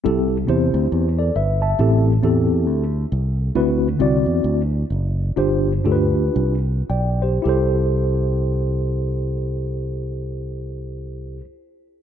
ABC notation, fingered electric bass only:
X:1
M:4/4
L:1/8
Q:"Swing" 1/4=126
K:C
V:1 name="Fingered electric bass" clef=bass
C,,2 E,, D,, E,,2 G,,,2 | A,,,2 E,,2 D,,2 C,,2 | D,,2 C,, E,, D,,2 ^F,,,2 | G,,,2 D,,2 C,,2 B,,,2 |
C,,8- | C,,8 |]